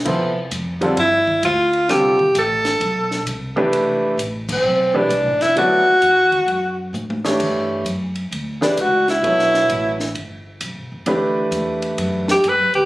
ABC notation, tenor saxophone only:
X:1
M:4/4
L:1/8
Q:"Swing" 1/4=131
K:Flyd
V:1 name="Tenor saxophone"
z3 D E2 F2 | G2 A4 z2 | z3 C2 D2 E | ^F6 z2 |
[K:Glyd] z4 z D F E- | E4 z4 | z4 z G B G |]